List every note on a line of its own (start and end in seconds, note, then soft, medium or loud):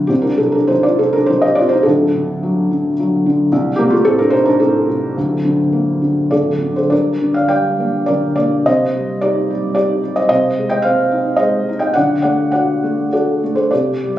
0.00 0.12 D1 medium
0.00 0.12 D2 medium
0.00 0.12 D3 soft
0.00 0.12 F#3 soft
0.00 0.12 A3 medium
0.00 0.12 F#4 medium
0.07 1.82 C2 medium
0.07 0.24 C4 medium
0.07 0.24 G4 medium
0.22 0.39 D4 soft
0.22 0.39 A#4 medium
0.37 0.99 C3 soft
0.37 0.54 C4 medium
0.37 0.55 A4 medium
0.52 0.69 D4 medium
0.52 0.69 A#4 medium
0.67 1.28 D#3 soft
0.67 0.84 D#4 medium
0.67 0.85 C5 medium
0.83 1.00 F4 medium
0.83 1.00 D5 medium
0.99 1.57 C3 soft
0.99 1.15 C4 medium
0.99 1.13 A4 medium
1.13 1.29 D4 medium
1.13 1.29 A#4 medium
1.26 1.85 D#3 soft
1.26 1.44 D#4 medium
1.26 1.43 C5 medium
1.42 1.58 G4 medium
1.42 1.56 D#5 medium
1.55 1.86 C3 medium
1.55 1.72 F4 medium
1.55 1.70 D5 medium
1.69 1.86 D#4 medium
1.69 1.85 C5 medium
1.83 3.47 D1 medium
1.83 3.47 D2 medium
1.83 2.93 D4 medium
1.83 2.91 A4 medium
2.14 2.70 D3 medium
2.43 2.98 F#3 medium
2.71 3.25 D3 medium
3.00 3.51 F#3 medium
3.26 3.51 D3 medium
3.52 5.13 C2 medium
3.76 3.91 A#3 medium
3.76 3.91 G4 medium
3.80 4.32 C3 medium
3.90 4.05 A3 medium
3.90 4.04 F4 medium
4.05 4.60 A2 medium
4.05 4.19 C4 medium
4.05 4.19 A4 loud
4.18 4.33 D4 medium
4.18 4.33 A#4 medium
4.30 4.88 C3 soft
4.30 4.46 D#4 medium
4.30 4.46 C5 loud
4.45 4.60 D4 medium
4.45 4.59 A#4 medium
4.60 5.15 A2 medium
4.60 6.28 C4 medium
4.60 6.27 A4 medium
4.89 5.16 C3 medium
5.17 6.28 D1 medium
5.17 6.29 D2 medium
5.45 6.00 D3 soft
5.72 6.30 A#3 soft
6.02 6.31 D3 soft
6.31 6.89 D1 soft
6.31 6.90 D2 medium
6.31 6.74 A4 medium
6.31 6.78 D5 medium
6.62 6.91 D3 soft
6.76 6.92 A4 soft
6.76 6.92 C5 medium
6.90 8.63 G2 medium
6.90 7.33 A#4 medium
6.90 7.35 D5 medium
7.21 8.08 D3 soft
7.34 7.48 D5 medium
7.34 7.50 F5 medium
7.48 8.63 G3 soft
7.48 8.04 D5 medium
7.48 8.09 G5 medium
7.80 8.36 A#3 soft
8.06 8.66 D3 soft
8.06 8.35 A#4 medium
8.06 8.34 D5 medium
8.36 8.66 A#3 soft
8.36 8.65 A#4 medium
8.36 8.67 D5 medium
8.66 10.25 C3 medium
8.66 9.19 C5 medium
8.66 9.19 D#5 medium
8.95 9.49 G3 soft
9.21 9.75 D#4 medium
9.21 9.72 G4 medium
9.21 9.73 D5 medium
9.50 10.02 G3 soft
9.75 10.28 D#4 soft
9.75 10.13 G4 medium
9.75 10.17 D5 medium
10.03 10.29 G3 medium
10.16 10.29 C5 medium
10.16 10.27 D#5 medium
10.29 11.92 C3 medium
10.29 10.68 C5 medium
10.29 10.67 D#5 medium
10.58 11.38 G#3 soft
10.70 10.83 D#5 medium
10.70 10.84 G5 medium
10.82 11.93 C4 medium
10.82 11.36 C5 medium
10.82 11.41 F5 medium
11.12 11.67 D#4 soft
11.36 11.94 G#3 medium
11.36 11.79 C5 medium
11.36 11.79 D#5 medium
11.69 11.96 D#4 medium
11.79 11.94 D#5 medium
11.79 11.94 G5 medium
11.94 13.69 D3 medium
11.94 12.21 D5 medium
11.94 12.21 F#5 medium
12.22 12.82 A3 soft
12.22 12.50 D5 medium
12.22 12.50 F#5 medium
12.52 13.11 F#4 soft
12.52 13.08 D5 medium
12.52 13.13 F#5 medium
12.84 13.42 A3 soft
13.13 13.71 F#4 soft
13.13 13.55 A4 soft
13.13 13.59 D5 medium
13.43 13.72 A3 soft
13.55 13.71 A4 soft
13.55 13.72 C5 medium
13.71 14.19 C3 medium
13.71 14.13 G4 medium
13.71 14.15 D5 medium
14.04 14.19 G3 soft